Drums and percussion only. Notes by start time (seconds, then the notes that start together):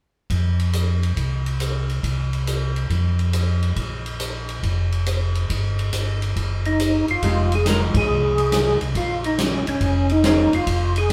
0.30 kick, ride
0.59 ride
0.73 hi-hat pedal, ride
1.03 ride
1.17 kick, ride
1.46 ride
1.60 hi-hat pedal, ride
1.89 ride
2.03 kick, ride
2.33 ride
2.47 hi-hat pedal, ride
2.76 ride
2.90 kick, ride
3.19 ride
3.33 hi-hat pedal, ride
3.62 ride
3.76 kick, ride
4.06 ride
4.20 hi-hat pedal, ride
4.49 ride
4.63 kick, ride
4.92 ride
5.06 hi-hat pedal, ride
5.35 ride
5.50 kick, ride
5.79 ride
5.93 hi-hat pedal, ride
6.22 ride
6.36 kick, ride
6.65 ride
6.80 hi-hat pedal, ride
7.08 ride
7.22 kick, ride
7.52 ride
7.66 snare, hi-hat pedal, ride
7.94 kick, ride
8.38 ride
8.52 snare, hi-hat pedal, ride
8.81 ride
8.95 kick, ride
9.24 ride
9.38 snare, hi-hat pedal, ride
9.67 ride
9.81 kick, ride
10.09 ride
10.24 snare, hi-hat pedal, ride
10.53 ride
10.67 kick, ride
10.96 ride